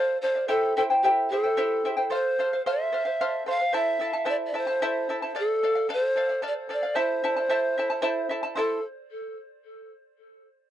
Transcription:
Already playing: A4 C5 D5 F5
0.22 A4 C5 D5 F5
0.35 D5 F5
0.48 E4 G4 A4 C5 E5 G5
0.76 E4 A4 C5 E5 G5
0.90 E4 C5 G5
1.03 E4 G4 C5 E5 G5
1.30 E4 A4 C5 E5 G5
1.44 E4 C5 G5
1.57 E4 G4 C5 E5 G5
1.85 E4 C5 E5 G5
1.97 E4 C5 G5
2.10 A4 C5 F5
2.39 A4 C5 F5
2.53 C5 F5
2.66 A4 C5 E5 F5
2.92 A4 C5 F5
3.05 C5 F5
3.21 A4 C5 F5
3.46 A4 C5 F5
3.60 C5 F5
3.73 E4 A4 C5 E5 A5
3.99 E4 A4 E5 A5
4.13 E4 A4 A5
4.25 E4 A4 C5 E5 A5
4.30 D5
4.47 D5
4.54 E4 A4 C5 E5 A5
4.67 E4 A4 A5
4.82 E4 A4 C5 E5 A5
5.09 E4 A4 E5 A5
5.22 E4 A4 A5
5.35 A4 D5 F5
5.39 A4
5.63 A4 D5 F5
5.75 D5 F5
5.89 A4 D5 F5
5.93 C5
6.16 A4 D5 F5
6.29 D5 F5
6.42 A4 D5 F5
6.47 D5
6.69 A4 D5 F5
6.83 D5 F5
6.95 E4 A4 C5 E5 A5
7.24 E4 A4 E5 A5
7.37 E4 A4 A5
7.50 E4 A4 C5 E5 A5
7.78 E4 A4 E5 A5
7.90 E4 A4 A5
8.02 E4 A4 C5 E5 A5
8.29 E4 A4 E5 A5
8.43 E4 A4 A5
8.55 E4 A4 C5 E5 A5

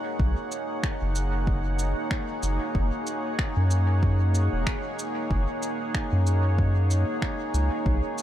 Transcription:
Already playing: A#3 D#4 G#4 C#5 F#5
0.19 B1, kick
0.52 shaker
0.83 finger snap, kick
1.02 F#1
1.15 shaker
1.47 kick
1.79 shaker
2.11 finger snap, kick
2.43 F#1, shaker
2.75 F#1, kick
3.07 shaker
3.39 finger snap, kick
3.57 F#2
3.71 shaker
4.03 kick
4.35 shaker
4.53 E1
4.67 finger snap, kick
4.99 shaker
5.30 F#1, kick
5.63 shaker
5.95 finger snap, kick
6.13 F#2
6.27 shaker
6.58 kick
6.91 shaker
7.22 finger snap, kick
7.54 C#2, shaker
7.86 B1, kick
8.18 shaker

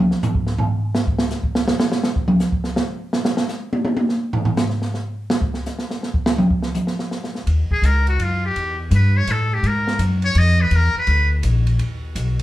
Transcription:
0.11 snare
0.23 floor tom, hi-hat pedal
0.35 kick
0.47 snare
0.58 floor tom
0.95 snare
1.07 kick
1.19 snare
1.30 snare, hi-hat pedal
1.43 kick
1.55 snare
1.68 snare
1.80 snare
1.92 snare
2.03 snare
2.16 kick
2.28 mid tom
2.40 snare, hi-hat pedal
2.52 kick
2.64 snare
2.76 snare
3.13 snare
3.25 snare
3.37 snare
3.49 snare, hi-hat pedal
3.73 high tom
3.85 high tom
3.97 high tom
4.09 snare
4.33 floor tom
4.45 floor tom
4.57 snare, hi-hat pedal
4.70 snare
4.82 snare
4.94 snare
5.30 snare
5.42 kick
5.54 snare
5.66 snare, hi-hat pedal
5.79 snare
5.91 snare
6.03 snare
6.14 kick
6.26 snare
6.38 mid tom
6.50 kick
6.62 snare
6.74 hi-hat pedal, mid tom
6.87 snare
6.99 snare
7.11 snare
7.24 snare
7.35 snare
7.47 D#2, ride
7.71 G#4, muted upright bass stroke, kick
7.82 C#2 A#4, hi-hat pedal, ride
8.07 F#4, ride
8.19 F#2 F4, ride
8.46 G4
8.56 E2, ride
8.91 G2, hi-hat pedal, ride
8.95 B4
9.17 C#5
9.27 A2 A4, hi-hat pedal, ride
9.54 G4
9.63 G#2, ride
9.67 A#4
9.87 snare
9.99 F#2, hi-hat pedal, ride
10.22 C#5, ride
10.35 F2 D#5, ride
10.62 B4
10.71 E2, ride
10.76 A#4
10.95 B4, muted upright bass stroke
11.07 D2, ride
11.43 A#1, hi-hat pedal, ride
11.67 ride
11.79 D#2, ride
12.15 B1, hi-hat pedal, ride
12.39 ride

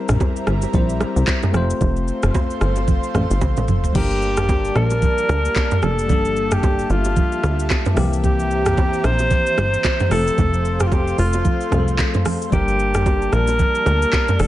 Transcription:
Already playing: G3 C4 E4 G4 A#4 C5 E5 A#5
0.09 A#1, cross-stick, mid tom, shaker
0.20 kick, high bongo, shaker
0.36 shaker
0.47 G1, cross-stick, shaker
0.62 high bongo, shaker
0.73 A#1 G3 C4 E4 C5, kick, low conga, shaker
0.89 shaker
1.00 cross-stick, low bongo, shaker
1.16 C2, shaker
1.27 kick, clap, high bongo, shaker
1.43 mid tom, low bongo, shaker
1.52 F1 A3 C4 F4 A4 C5 F5 C6, cross-stick, low conga, shaker
1.57 C5
1.70 shaker
1.81 F1, kick, low conga, shaker
1.97 shaker
2.08 shaker
2.23 F1, cross-stick, mid tom, shaker
2.35 kick, high bongo, shaker
2.50 shaker
2.61 G1, cross-stick, shaker
2.76 high bongo, shaker
2.88 kick, low conga, shaker
3.03 shaker
3.14 A1, cross-stick, mid tom, low bongo, shaker
3.30 G1, shaker
3.41 A1, kick, high tom, high bongo, shaker
3.57 mid tom, low bongo, shaker
3.68 F1, mid tom, low conga, shaker
3.84 floor tom, shaker
3.93 G1 G3 A#3 D4 G4 D5 A5, kick, crash, low conga, shaker
3.98 A#4
4.11 shaker
4.22 shaker
4.37 cross-stick, mid tom, shaker
4.49 kick, high bongo, shaker
4.65 shaker
4.75 A#1 A#4, cross-stick, shaker
4.90 high bongo, shaker
5.02 kick, low conga, shaker
5.18 shaker
5.29 D2, cross-stick, low bongo, shaker
5.45 shaker
5.56 kick, clap, high bongo, shaker
5.71 mid tom, low bongo, shaker
5.82 F1 A4, cross-stick, low conga, shaker
5.99 shaker
6.07 G1 G3 A#3 D4 E5, kick, low conga, shaker
6.12 A4
6.25 shaker
6.36 shaker
6.51 G4, cross-stick, mid tom, shaker
6.63 kick, high bongo, shaker
6.79 shaker
6.90 G1 F4, shaker
7.05 high bongo, shaker
7.16 kick, low conga, shaker
7.32 shaker
7.43 D2, cross-stick, low bongo, shaker
7.59 shaker
7.70 kick, clap, high bongo, shaker
7.85 mid tom, low bongo, shaker
7.94 C2 E3 A#3 C4 C5 A#5, cross-stick, open hi-hat, low conga, shaker
7.99 G4
8.13 shaker
8.24 G4, kick, low conga, shaker
8.39 shaker
8.51 shaker
8.66 cross-stick, mid tom, shaker
8.77 kick, high bongo, shaker
8.93 shaker
9.04 A#1 C5, cross-stick, shaker
9.19 high bongo, shaker
9.31 kick, low conga, shaker
9.46 shaker
9.58 G1, cross-stick, low bongo, shaker
9.74 shaker
9.84 kick, clap, high bongo, shaker
10.00 mid tom, low bongo, shaker
10.09 F1 F3 A3 C4 A4 F5 C6, cross-stick, open hi-hat, low conga, shaker
10.14 A4
10.27 shaker
10.38 F1, kick, low conga, shaker
10.54 shaker
10.65 shaker
10.80 G4, cross-stick, mid tom, shaker
10.87 F4
10.92 G4, kick, high bongo, shaker
11.08 shaker
11.18 F1 F4, open hi-hat, shaker
11.33 high bongo, shaker
11.45 kick, low conga, shaker
11.61 shaker
11.71 C2 F3 A3 C4 G#4, cross-stick, mid tom, low bongo, shaker
11.80 A4
11.88 shaker
11.99 kick, clap, high bongo, shaker
12.14 mid tom, low bongo, shaker
12.25 cross-stick, open hi-hat, low conga, shaker
12.42 shaker
12.50 G1 G3 A#3 D4 G4 D5 A5, kick, low conga, shaker
12.55 A#4
12.68 shaker
12.79 shaker
12.94 cross-stick, mid tom, shaker
13.06 kick, high bongo, shaker
13.22 shaker
13.33 A#1 A#4, cross-stick, shaker
13.47 high bongo, shaker
13.59 kick, low conga, shaker
13.75 shaker
13.86 D2, cross-stick, low bongo, shaker
14.02 shaker
14.13 kick, clap, high bongo, shaker
14.28 mid tom, low bongo, shaker
14.39 F1 A4, cross-stick, open hi-hat, low conga, shaker

